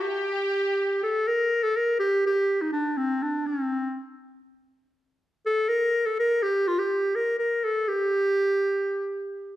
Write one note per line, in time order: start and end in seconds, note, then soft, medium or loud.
0.02 1.01 G4 medium
0.07 1.04 G4 medium
1.03 1.29 A4 medium
1.28 1.65 A#4 loud
1.63 1.78 A4 medium
1.77 1.99 A#4 medium
1.99 2.23 G4 medium
2.27 2.63 G4 medium
2.62 2.72 D#4 medium
2.73 2.99 D4 medium
2.97 3.24 C4 medium
3.22 3.48 D4 medium
3.47 4.02 C4 medium
5.46 5.70 A4 medium
5.69 6.07 A#4 loud
6.06 6.18 A4 medium
6.19 6.44 A#4 medium
6.42 6.69 G4 medium
6.68 6.80 F4 medium
6.79 7.17 G4 medium
7.16 7.38 A#4 medium
7.39 7.66 A#4 medium
7.64 7.90 A4 medium
7.88 9.56 G4 medium